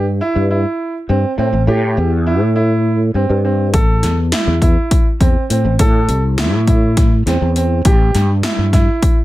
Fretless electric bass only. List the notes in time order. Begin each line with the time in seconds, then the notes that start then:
Already playing: G2
0.35 G2
1.09 G2
1.38 A2
1.53 A1
1.67 A2
1.97 E2
2.41 A2
3.14 G2
3.29 G2
3.73 A1
4.03 E2
4.47 E2
5.20 E2
5.50 A2
5.65 A1
5.79 A2
6.08 C2
6.53 A2
7.26 E2
7.41 E2
7.85 A1
8.14 G2
8.58 G2